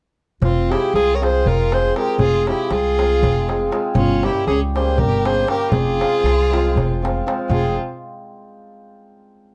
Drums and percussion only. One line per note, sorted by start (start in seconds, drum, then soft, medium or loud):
0.42 darbuka dum medium
0.57 darbuka tek soft
0.72 darbuka tek medium
0.96 darbuka tek medium
1.23 darbuka tek medium
1.47 darbuka dum medium
1.60 darbuka tek soft
1.72 darbuka tek medium
1.96 darbuka tek medium
2.09 darbuka tek soft
2.19 darbuka dum medium
2.34 darbuka tek soft
2.47 darbuka tek medium
2.71 darbuka tek medium
2.99 darbuka tek medium
3.23 darbuka dum medium
3.36 darbuka tek soft
3.49 darbuka tek medium
3.72 darbuka tek medium
3.95 darbuka dum medium
4.09 darbuka tek soft
4.23 darbuka tek medium
4.48 darbuka tek medium
4.76 darbuka tek medium
4.98 darbuka dum medium
5.12 darbuka tek soft
5.25 darbuka tek medium
5.48 darbuka tek medium
5.72 darbuka dum medium
5.86 darbuka tek soft
6.01 darbuka tek medium
6.14 darbuka tek soft
6.26 darbuka tek medium
6.40 darbuka tek soft
6.53 darbuka tek medium
6.66 darbuka tek soft
6.77 darbuka dum medium
6.91 darbuka tek soft
7.05 darbuka tek medium
7.28 darbuka tek medium
7.39 darbuka tek soft
7.51 darbuka dum medium